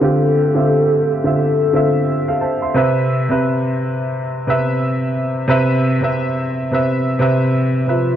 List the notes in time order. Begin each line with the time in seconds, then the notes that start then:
Already playing: C4 F4 E5
0.00 D3 C4 F4
0.04 G4 A4
0.55 D3 C4 F4 E5
1.24 D3 C4 F4 E5
1.42 A4
1.73 D3 C4 F4 E5
2.28 A4 F5
2.41 C5 A5
2.62 E5 C6
2.74 C3 C4 B4 E5
3.29 C3 C4 B4 E5
4.47 C3 C4 B4 E5
5.48 C3 C4 B4 E5
6.01 C3 C4 B4 E5
6.71 C3 C4 B4 E5
7.19 C3 C4 B4 E5
7.87 C3 C4 F4 B4 E5